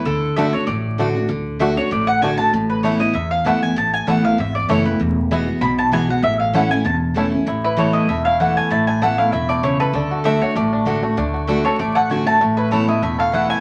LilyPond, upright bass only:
\new Staff \with { instrumentName = "Upright bass" } { \clef bass \time 4/4 \key a \major \tempo 4 = 194 d,2 a,,2 | d,2 a,,2 | a,,2 e,2 | a,,4 a,,4 gis,,4 fis,,4 |
e,,2 b,,2 | a,,2 e,,2 | a,,2 e,,2 | a,,2 e,,2 |
d,2 a,,2 | d,2 a,,2 | a,,2 e,,2 | }